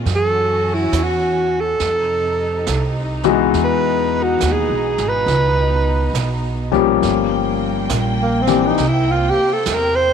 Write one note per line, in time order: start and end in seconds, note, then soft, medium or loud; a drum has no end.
0.06 0.91 F#2 medium
0.06 1.81 E3 medium
0.06 1.80 C#4 medium
0.06 1.80 F#4 medium
0.06 brush sweep soft
0.06 snare soft
0.15 0.75 A4 medium
0.74 1.05 E4 medium
0.92 1.77 E2 medium
0.92 snare medium
0.92 hi-hat pedal medium
1.03 1.62 F#4 medium
1.61 2.91 A4 medium
1.80 2.65 F2 medium
1.80 3.52 C3 medium
1.80 6.98 D#4 medium
1.80 brush sweep soft
1.80 snare soft
2.67 3.52 C2 medium
2.67 snare medium
2.67 hi-hat pedal soft
3.23 4.35 E3 medium
3.23 4.35 G#3 medium
3.23 4.35 B3 medium
3.23 4.35 D#4 medium
3.23 4.35 F#4 medium
3.23 snare soft
3.54 4.38 E2 medium
3.54 6.99 B2 medium
3.54 brush sweep soft
3.54 snare soft
3.64 4.24 B4 medium
4.23 4.54 F#4 medium
4.40 4.71 D#2 medium
4.40 snare medium
4.40 hi-hat pedal medium
4.52 5.10 G#4 medium
4.70 4.98 B1 medium
4.98 5.26 G#1 medium
4.98 snare soft
5.09 6.39 B4 medium
5.26 6.12 C#2 medium
5.26 brush sweep medium
5.26 snare soft
6.13 6.99 B1 medium
6.13 snare medium
6.13 hi-hat pedal medium
6.72 7.84 F3 medium
6.72 7.84 G3 medium
6.72 7.84 A#3 medium
6.72 7.84 C#4 medium
6.72 7.84 G4 medium
6.72 kick medium
7.02 7.87 G1 medium
7.02 8.76 G3 medium
7.02 10.13 A#3 medium
7.02 10.13 G5 medium
7.02 brush sweep soft
7.02 snare soft
7.89 8.75 A#1 medium
7.89 snare medium
7.89 hi-hat pedal medium
8.22 8.43 A#3 medium
8.42 8.68 C4 medium
8.47 8.74 E3 medium
8.47 8.74 A#3 soft
8.47 8.74 C4 medium
8.47 8.74 D4 medium
8.47 8.75 G4 medium
8.47 snare soft
8.67 8.90 D#4 medium
8.78 9.31 C2 medium
8.78 10.13 C3 medium
8.78 10.13 C4 medium
8.78 brush sweep soft
8.78 snare soft
8.88 9.12 E4 medium
9.11 9.31 F4 medium
9.30 9.55 G4 medium
9.37 muted upright bass stroke soft
9.53 9.76 A4 medium
9.66 10.13 E2 medium
9.66 snare medium
9.66 hi-hat pedal medium
9.74 9.97 A#4 medium
9.95 10.13 C5 medium